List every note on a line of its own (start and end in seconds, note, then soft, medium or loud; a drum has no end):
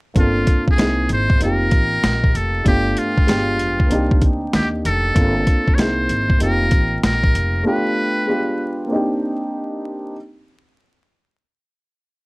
0.14 0.43 G1 loud
0.14 0.75 A#3 medium
0.14 0.76 C4 medium
0.14 0.78 D4 medium
0.14 0.79 F4 medium
0.14 0.79 A4 medium
0.14 kick loud
0.14 closed hi-hat medium
0.19 0.66 F4 loud
0.47 kick medium
0.47 closed hi-hat medium
0.68 1.08 G#4 medium
0.68 kick medium
0.76 1.05 C2 medium
0.76 1.36 A#3 medium
0.76 1.38 C4 medium
0.76 1.40 D#4 medium
0.76 1.41 E4 medium
0.76 1.42 G#4 medium
0.76 snare loud
0.76 closed hi-hat medium
1.09 1.36 G#1 medium
1.09 1.40 C5 loud
1.09 closed hi-hat medium
1.30 kick medium
1.38 1.68 F1 medium
1.38 2.62 A#3 medium
1.38 2.63 C4 soft
1.38 2.63 D#4 medium
1.38 closed hi-hat medium
1.43 2.64 F4 soft
1.43 2.65 G4 medium
1.43 2.38 A#4 loud
1.71 1.99 A1 medium
1.71 kick medium
1.71 closed hi-hat medium
2.03 2.30 A#1 medium
2.03 snare loud
2.03 closed hi-hat medium
2.24 kick medium
2.35 2.61 F1 medium
2.35 2.67 A4 medium
2.35 closed hi-hat medium
2.64 2.93 G1 medium
2.64 3.27 A3 medium
2.64 3.25 B3 medium
2.64 3.26 D4 medium
2.64 3.28 F4 medium
2.64 3.00 G4 loud
2.64 kick loud
2.64 closed hi-hat medium
2.68 3.29 G4 medium
2.97 4.28 F4 medium
2.97 closed hi-hat medium
3.18 kick medium
3.26 3.60 G1 medium
3.26 3.90 G#3 medium
3.26 3.90 B3 medium
3.26 3.89 D4 medium
3.26 3.91 F4 medium
3.26 3.92 G4 medium
3.26 snare loud
3.26 closed hi-hat medium
3.59 3.86 F1 medium
3.59 closed hi-hat medium
3.80 kick medium
3.86 5.11 A#3 medium
3.86 5.12 C4 medium
3.86 5.13 D4 medium
3.91 4.18 C2 medium
3.91 5.14 D#4 medium
3.91 5.15 G4 medium
3.91 closed hi-hat medium
4.11 kick medium
4.22 4.49 D2 medium
4.22 kick medium
4.22 closed hi-hat medium
4.53 4.80 D#2 medium
4.53 4.68 G4 medium
4.53 snare loud
4.53 closed hi-hat medium
4.85 5.12 F1 medium
4.85 5.76 A4 loud
4.85 closed hi-hat medium
5.14 5.43 G1 loud
5.14 5.75 A#3 medium
5.14 5.75 C4 medium
5.14 5.78 D4 medium
5.14 5.79 F4 medium
5.14 5.79 A4 medium
5.14 kick loud
5.14 closed hi-hat medium
5.47 kick medium
5.47 closed hi-hat medium
5.68 kick medium
5.75 6.05 C2 medium
5.75 6.35 A#3 medium
5.75 6.37 C4 medium
5.75 6.39 D#4 medium
5.75 5.82 C#5 medium
5.75 closed hi-hat medium
5.79 6.41 E4 medium
5.79 6.42 G#4 medium
5.79 6.42 C5 medium
5.79 snare medium
6.09 6.36 G#1 medium
6.09 closed hi-hat medium
6.30 kick medium
6.37 6.68 F1 medium
6.37 7.61 A#3 medium
6.37 7.62 C4 medium
6.37 7.63 D#4 medium
6.37 closed hi-hat medium
6.42 7.64 F4 medium
6.42 7.65 G4 medium
6.42 7.00 A#4 medium
6.71 6.99 A1 medium
6.71 kick medium
6.71 closed hi-hat medium
7.03 7.30 A#1 medium
7.03 7.63 A#4 loud
7.03 snare loud
7.03 closed hi-hat medium
7.24 kick medium
7.35 7.61 F1 medium
7.35 closed hi-hat medium
7.63 8.27 A3 medium
7.63 8.25 B3 medium
7.63 8.27 D4 medium
7.63 8.28 F4 medium
7.63 8.87 B4 medium
7.67 8.28 G4 medium
8.26 8.89 G#3 medium
8.26 8.90 B3 medium
8.26 8.89 D4 medium
8.26 8.91 F4 medium
8.26 8.91 G4 medium
8.86 10.11 A#3 medium
8.86 10.12 C4 medium
8.86 10.13 D4 medium
8.92 10.14 D#4 medium
8.92 10.15 G4 medium